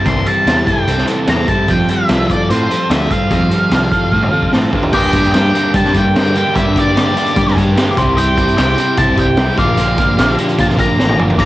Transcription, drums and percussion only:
0.06 kick, closed hi-hat
0.26 closed hi-hat
0.47 snare, closed hi-hat
0.67 kick, closed hi-hat
0.88 closed hi-hat
0.98 snare
1.08 closed hi-hat
1.27 snare, closed hi-hat
1.48 kick, closed hi-hat
1.68 kick, closed hi-hat
1.89 closed hi-hat
2.09 snare, closed hi-hat
2.30 kick, closed hi-hat
2.50 closed hi-hat
2.71 closed hi-hat
2.91 snare, closed hi-hat
3.11 kick, closed hi-hat
3.31 kick, closed hi-hat
3.51 closed hi-hat
3.71 snare, closed hi-hat
3.92 kick, closed hi-hat
4.12 kick
4.23 high tom
4.43 kick
4.53 snare
4.73 kick
4.83 floor tom
4.93 kick, crash
5.13 kick, closed hi-hat
5.24 closed hi-hat
5.34 snare, closed hi-hat
5.55 closed hi-hat
5.74 kick, closed hi-hat
5.85 snare
5.94 kick, closed hi-hat
6.16 snare, closed hi-hat
6.25 closed hi-hat
6.35 closed hi-hat
6.56 kick, closed hi-hat
6.76 kick, closed hi-hat
6.97 snare, closed hi-hat
7.17 closed hi-hat
7.26 closed hi-hat
7.36 kick, closed hi-hat
7.48 snare
7.57 kick, closed hi-hat
7.77 snare, closed hi-hat
7.97 kick, closed hi-hat
8.18 closed hi-hat
8.38 kick, closed hi-hat
8.48 closed hi-hat
8.58 snare, closed hi-hat
8.78 closed hi-hat
8.97 kick, closed hi-hat
9.17 kick, closed hi-hat
9.37 snare, closed hi-hat
9.47 closed hi-hat
9.57 kick, closed hi-hat
9.77 closed hi-hat
9.98 kick, closed hi-hat
10.19 snare, closed hi-hat
10.38 closed hi-hat
10.49 closed hi-hat
10.59 kick, closed hi-hat
10.69 snare
10.79 kick, closed hi-hat
11.00 snare
11.09 high tom
11.19 mid tom
11.30 floor tom
11.39 kick, crash

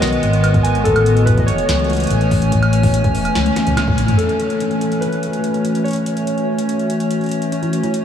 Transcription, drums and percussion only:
0.02 snare, closed hi-hat
0.07 closed hi-hat
0.13 closed hi-hat
0.23 closed hi-hat
0.33 closed hi-hat
0.44 closed hi-hat, high woodblock
0.54 kick, closed hi-hat
0.65 closed hi-hat
0.75 closed hi-hat
0.85 kick, closed hi-hat
0.96 closed hi-hat, high woodblock
1.06 closed hi-hat
1.17 closed hi-hat
1.27 kick, closed hi-hat
1.38 kick, closed hi-hat
1.48 closed hi-hat
1.58 closed hi-hat
1.69 snare, closed hi-hat
1.79 closed hi-hat
1.84 closed hi-hat
1.90 closed hi-hat
1.93 closed hi-hat
1.95 closed hi-hat
1.97 closed hi-hat
2.00 closed hi-hat
2.04 closed hi-hat
2.07 closed hi-hat
2.10 closed hi-hat
2.21 closed hi-hat
2.31 kick, open hi-hat
2.42 closed hi-hat
2.52 kick, closed hi-hat
2.63 closed hi-hat, high woodblock
2.73 closed hi-hat
2.83 kick, open hi-hat
2.94 closed hi-hat
3.04 kick, closed hi-hat
3.15 open hi-hat
3.25 closed hi-hat, high woodblock
3.35 snare, high tom
3.46 closed hi-hat, high tom
3.56 snare, closed hi-hat
3.67 closed hi-hat, mid tom
3.77 snare, closed hi-hat, high woodblock
3.87 kick, mid tom
3.98 closed hi-hat
4.08 closed hi-hat, mid tom
4.19 closed hi-hat
4.29 closed hi-hat
4.40 closed hi-hat
4.50 closed hi-hat
4.60 closed hi-hat
4.71 closed hi-hat
4.81 closed hi-hat
4.92 closed hi-hat
5.02 closed hi-hat
5.12 closed hi-hat
5.23 closed hi-hat
5.33 closed hi-hat
5.44 closed hi-hat
5.54 closed hi-hat
5.65 closed hi-hat
5.75 closed hi-hat
5.85 closed hi-hat
5.88 closed hi-hat
5.91 closed hi-hat
5.93 closed hi-hat
5.96 closed hi-hat
6.06 closed hi-hat
6.17 closed hi-hat
6.27 closed hi-hat
6.38 closed hi-hat
6.59 closed hi-hat
6.69 closed hi-hat
6.79 closed hi-hat
6.90 closed hi-hat
7.00 closed hi-hat
7.11 closed hi-hat
7.21 closed hi-hat
7.24 closed hi-hat
7.26 closed hi-hat
7.29 closed hi-hat
7.31 closed hi-hat
7.42 closed hi-hat
7.52 closed hi-hat
7.63 closed hi-hat
7.73 closed hi-hat
7.83 closed hi-hat
7.94 closed hi-hat

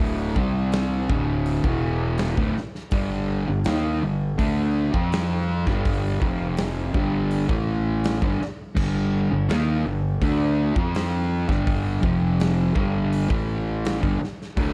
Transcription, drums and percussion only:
0.00 open hi-hat
0.36 kick
0.72 snare, open hi-hat
1.09 kick
1.46 open hi-hat
1.64 kick
2.18 snare, open hi-hat
2.37 kick
2.57 snare
2.75 snare
2.91 kick, open hi-hat
3.64 snare, open hi-hat
4.39 kick, open hi-hat
4.94 kick
5.12 snare, open hi-hat
5.67 kick, snare
5.85 kick, open hi-hat
6.22 kick
6.57 snare, open hi-hat
6.94 kick
7.31 open hi-hat
7.49 kick
8.04 snare, open hi-hat
8.22 kick
8.42 snare
8.77 kick, crash
9.49 snare, open hi-hat
10.22 kick, open hi-hat
10.76 kick
10.95 snare, open hi-hat
11.49 kick, snare
11.67 kick, open hi-hat
12.03 kick
12.40 snare, open hi-hat
12.76 kick
13.13 open hi-hat
13.30 kick
13.85 snare, open hi-hat
14.03 kick
14.24 snare
14.42 snare
14.57 kick, open hi-hat

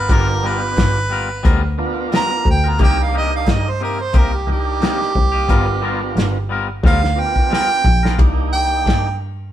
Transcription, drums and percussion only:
0.09 kick, closed hi-hat
0.77 kick, snare, closed hi-hat
1.45 kick, closed hi-hat
2.12 snare, closed hi-hat
2.46 kick
2.79 kick, closed hi-hat
3.46 kick, snare, closed hi-hat
4.13 kick, closed hi-hat
4.82 snare, closed hi-hat
5.02 snare
5.15 kick
5.49 kick, closed hi-hat
6.17 snare, closed hi-hat
6.84 kick, snare
7.04 snare
7.36 kick
7.53 snare
7.85 kick
8.05 snare
8.19 kick, ride bell
8.86 kick, snare, ride bell

